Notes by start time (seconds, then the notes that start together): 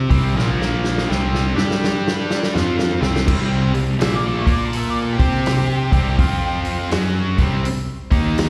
0.10 C2 C3 G3 C4, kick, open hi-hat
0.36 A#1 A#2 F3 A#3, snare
0.61 snare
0.84 snare
0.98 snare
1.09 C2 C3 G3 C4, snare
1.34 snare
1.55 G2 G3 D4 G4, snare
1.71 snare
1.84 snare
2.08 snare
2.30 snare
2.43 snare
2.54 F2 F3 C4 F4, snare
2.79 snare
3.00 C2 C3 G3 C4, snare
3.16 snare
3.27 C2 C3 G3 C4, kick, crash
3.73 C2 C3 G3, open hi-hat
3.99 A#1 A#2 F3 A#3 E5, snare, open hi-hat
4.15 D5
4.27 A4
4.39 E5
4.46 A#2 A#3 F4 A#4, kick, open hi-hat
4.52 D5
4.65 A4
4.73 open hi-hat
4.77 E5
4.90 D5
5.02 A4
5.13 G4
5.19 C3 C4 G4 C5, kick, open hi-hat
5.46 snare, open hi-hat
5.92 C2 C3 G3 C4, kick, open hi-hat
6.19 F2 F3 C4 F4, kick, open hi-hat
6.65 open hi-hat
6.91 F#2 F#3 C#4 F#4, snare, open hi-hat
7.38 C2 C3 G3 C4, kick, open hi-hat
7.65 muted distorted electric guitar stroke, muted picked electric bass stroke, open hi-hat
8.11 D#2 D#3 A#3 D#4, kick, open hi-hat
8.38 snare, open hi-hat